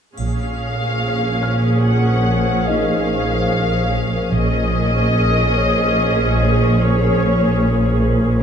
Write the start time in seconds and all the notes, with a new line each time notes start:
0.16 A#1 A#2 C#4 G#4 F5, triangle
1.43 F6
1.85 F#5
2.66 D#4 D#5 F5
4.31 A#1 A#2 C#4 G#4 D#5
5.57 C#5
6.80 C#5
8.40 G#5 D6